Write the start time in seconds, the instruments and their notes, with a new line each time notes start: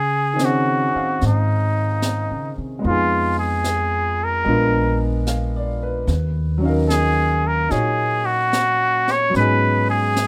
Already playing: upright bass C#3, muted trumpet G#4
0.34 grand piano D#3 C4
0.39 grand piano C#4 D#4, snare, hi-hat pedal
0.45 muted trumpet F#4, grand piano G#4
0.93 grand piano C4 F5, muted upright bass stroke
1.21 upright bass G#2, brush sweep, snare
1.27 muted trumpet D#4
2.02 snare, hi-hat pedal
2.31 upright bass C#3
2.58 upright bass C3
2.79 grand piano G#3 B3
2.83 upright bass F2, grand piano D#4, muted trumpet F4, brush sweep
2.87 grand piano F4 G#4
3.39 muted trumpet G#4
3.64 snare, hi-hat pedal
4.24 muted trumpet A#4
4.45 upright bass A#1, grand piano G#3 B3 D4, brush sweep
4.49 grand piano F4 A#4
5.27 grand piano F5, snare, hi-hat pedal
5.56 grand piano D5
5.83 grand piano B4
6.07 upright bass D#2, brush sweep, snare
6.58 grand piano F#3 C#4
6.63 grand piano D#4 F5
6.69 grand piano A#4
6.89 muted trumpet G#4, snare, hi-hat pedal
7.47 muted trumpet A#4
7.69 upright bass A#2, grand piano D#4 F#4 C#5, muted trumpet G#4, brush sweep, snare
8.26 muted trumpet F#4
8.53 snare, hi-hat pedal
9.08 muted trumpet C#5, snare
9.30 grand piano F#3 B3
9.34 upright bass G#2, grand piano C#4 D#4, muted trumpet B4, brush sweep, snare
9.40 grand piano G#4
9.90 muted trumpet G#4
10.16 snare, hi-hat pedal